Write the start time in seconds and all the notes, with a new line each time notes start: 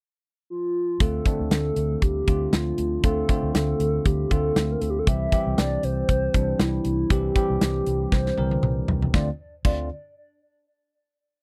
0.50 F4
1.00 D2 D3 A3 C4 F4 A4, kick, closed hi-hat
1.26 D3 A3 C4 D4, kick, closed hi-hat
1.40 D2
1.51 D2 A4, snare, closed hi-hat
1.76 D2, closed hi-hat
2.02 D2 G4, kick, closed hi-hat
2.28 D2 D3 A3 C4 F4, kick, closed hi-hat
2.53 D2 F4, snare, closed hi-hat
2.78 D2, closed hi-hat
3.04 D2 D3 A3 C4 F4 A4, kick, closed hi-hat
3.29 D3 A3 C4 F4, kick, closed hi-hat
3.43 D2
3.54 D2 A4, snare, closed hi-hat
3.80 D2, closed hi-hat
4.06 D2 G4, kick, closed hi-hat
4.30 D2 D3 A3 C4 F4 A4, kick, closed hi-hat
4.56 D2, snare, closed hi-hat
4.72 A#4
4.80 D2 A4, closed hi-hat
4.90 G4
4.99 A4
5.07 C2 E3 G3 C4 G4 E5, kick, closed hi-hat
5.32 E3 G3 C4 G4, kick, closed hi-hat
5.46 C2
5.58 C2 D5, snare, closed hi-hat
5.83 C2 C5, closed hi-hat
6.09 C2, kick, closed hi-hat
6.34 C2 E3 G3 C4 D4, kick, closed hi-hat
6.59 C2 E4, snare, closed hi-hat
6.85 C2, closed hi-hat
7.10 C2 E3 G3 C4 G4, kick, closed hi-hat
7.35 E3 G3 C4 G4, kick, closed hi-hat
7.50 C2
7.61 C2 G4, snare, closed hi-hat
7.86 C2, closed hi-hat
8.12 C2 C5, kick, snare
8.26 snare
8.37 C2 E3 G3 C4 A#4, high tom
8.51 high tom
8.63 C2, mid tom
8.88 C2, floor tom
9.02 floor tom
9.14 D2 D3 A3 C4 F4 D5, kick, snare
9.65 D2 D3 A3 C4 F4 D5, kick, crash